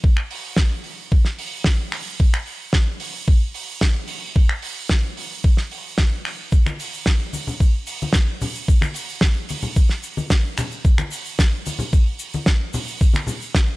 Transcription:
0.04 kick
0.17 finger snap
0.31 open hi-hat
0.56 kick, snare
0.84 open hi-hat
1.12 kick
1.25 snare
1.39 open hi-hat
1.64 kick, snare, open hi-hat
1.92 finger snap, open hi-hat
2.20 kick
2.34 finger snap
2.46 open hi-hat
2.73 kick, snare
3.00 open hi-hat
3.28 kick
3.54 open hi-hat
3.81 kick, snare
4.08 open hi-hat
4.36 kick
4.49 finger snap
4.62 open hi-hat
4.89 kick, snare
5.17 open hi-hat
5.44 kick
5.57 snare
5.71 open hi-hat
5.98 kick, snare
6.25 finger snap, open hi-hat
6.52 kick, cabasa, shaker
6.66 finger snap, high conga, shaker
6.79 open hi-hat, cabasa, shaker
6.93 cabasa, shaker
7.06 kick, snare, cabasa, shaker
7.33 open hi-hat, high conga, cabasa, shaker
7.47 low conga, cabasa, shaker
7.60 kick, cabasa, shaker
7.87 open hi-hat, cabasa, shaker
8.01 high conga, cabasa, shaker
8.13 kick, snare, cabasa, shaker
8.41 open hi-hat, low conga, cabasa, shaker
8.55 cabasa, shaker
8.68 kick, cabasa, shaker
8.81 finger snap, high conga, shaker
8.94 open hi-hat, cabasa, shaker
9.09 cabasa, shaker
9.21 kick, snare, cabasa, shaker
9.49 open hi-hat, high conga, cabasa, shaker
9.62 low conga, cabasa, shaker
9.76 kick, cabasa, shaker
9.89 snare
10.03 open hi-hat, cabasa, shaker
10.17 high conga, cabasa, shaker
10.30 kick, snare, cabasa, shaker
10.57 finger snap, open hi-hat, low conga, cabasa, shaker
10.71 cabasa, shaker
10.85 kick, cabasa, shaker
10.98 finger snap, high conga, shaker
11.11 open hi-hat, cabasa, shaker
11.25 cabasa, shaker
11.39 kick, snare, cabasa, shaker
11.66 open hi-hat, high conga, cabasa, shaker
11.79 low conga, cabasa, shaker
11.93 kick, cabasa, shaker
12.19 open hi-hat, cabasa, shaker
12.33 high conga, cabasa, shaker
12.46 kick, snare, cabasa, shaker
12.73 open hi-hat, low conga, cabasa, shaker
12.87 cabasa, shaker
13.00 kick, cabasa, shaker
13.14 finger snap, high conga, shaker
13.27 open hi-hat, low conga, cabasa, shaker
13.42 cabasa, shaker
13.55 kick, snare, cabasa, shaker

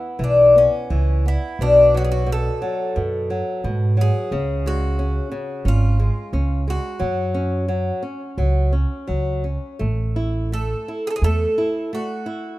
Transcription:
Already playing: B3 E4
0.19 B1 E3
0.24 D4
0.56 B3 C#4
0.90 C#2 E3
1.26 B3 E4
1.59 B1 B2 D4
1.94 F#3 F#4
2.04 G#4
2.12 F#4
2.27 B2
2.32 A4
2.62 F#3
2.96 F#2 B2
3.30 F#3
3.64 G#2 B2
3.97 F#3
4.01 G#4
4.31 C#2 C#3
4.66 G#3 F#4
4.99 C#4
5.31 C#3
5.65 G#1 C#4 F4
6.00 G#3
6.33 C#2 C#4
6.68 G#3 F#4
7.00 F#2 F#3
7.34 C#4
7.68 F#3
8.03 C#4
8.38 C#2 F#3
8.73 C#4
9.07 C#2 F#3
9.44 C#4
9.79 A1 A3
10.16 E4
10.52 A3 A4
10.88 E4
11.07 G#4 A4
11.16 G#4
11.22 E2 A3 A4
11.58 E4
11.93 A3 F#4
12.26 E4

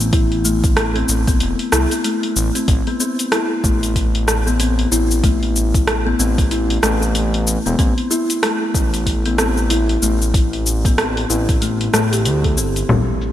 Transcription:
Already playing: A1
0.00 cabasa
0.13 E4, kick, open hi-hat, cabasa
0.32 open hi-hat
0.45 A3, cabasa
0.64 kick, open hi-hat, cabasa
0.77 cross-stick, open hi-hat, cabasa
0.96 C4, open hi-hat
1.09 A1, cabasa
1.27 B3, kick, open hi-hat, cabasa
1.40 E1, open hi-hat, cabasa
1.59 open hi-hat
1.72 C2 E4, cross-stick, cabasa
1.91 open hi-hat, cabasa
2.04 A3, open hi-hat, cabasa
2.23 open hi-hat
2.36 A1, cabasa
2.55 C4, open hi-hat, cabasa
2.68 A1, kick, open hi-hat, cabasa
2.87 B3, open hi-hat
3.00 C4, cabasa
3.19 open hi-hat, cabasa
3.32 E4, cross-stick, open hi-hat, cabasa
3.64 A1 A3, kick, cabasa
3.83 open hi-hat, cabasa
3.96 kick, open hi-hat, cabasa
4.15 open hi-hat
4.28 cross-stick, cabasa
4.47 B3, cabasa
4.60 C4, open hi-hat, cabasa
4.79 open hi-hat
4.92 A1 E4, cabasa
5.11 cabasa
5.24 A3, kick, open hi-hat, cabasa
5.43 open hi-hat
5.56 cabasa
5.74 kick, open hi-hat, cabasa
5.88 cross-stick, open hi-hat, cabasa
6.07 B3
6.19 A1 C4, cabasa
6.38 kick, open hi-hat, cabasa
6.51 E4, open hi-hat, cabasa
6.70 open hi-hat
6.83 A1 A3, cross-stick, cabasa
7.02 cabasa
7.15 open hi-hat, cabasa
7.34 open hi-hat
7.47 cabasa
7.66 E1 B3, cabasa
7.79 A1 C4, kick, open hi-hat, cabasa
7.98 open hi-hat
8.11 E4, cabasa
8.30 open hi-hat, cabasa
8.43 A3, cross-stick, open hi-hat, cabasa
8.74 A1, kick, cabasa
8.94 open hi-hat, cabasa
9.06 kick, open hi-hat, cabasa
9.26 B3, open hi-hat
9.38 C4, cross-stick, cabasa
9.58 cabasa
9.70 E4, open hi-hat, cabasa
9.89 open hi-hat
10.02 A1 A3, cabasa
10.22 cabasa
10.34 kick, open hi-hat, cabasa
10.53 open hi-hat
10.66 cabasa
10.85 B3, kick, open hi-hat, cabasa
10.98 C4, cross-stick, open hi-hat, cabasa
11.17 open hi-hat
11.30 A1 E4, cabasa
11.49 kick, open hi-hat, cabasa
11.62 A3, open hi-hat, cabasa
11.81 open hi-hat
11.94 A1 A3, cross-stick, cabasa
12.13 G4, open hi-hat, cabasa
12.25 D2, open hi-hat, cabasa
12.44 A4, kick, open hi-hat
12.57 G1 C4, cabasa
12.76 open hi-hat, cabasa
12.89 A1, low conga, cabasa
13.21 cabasa

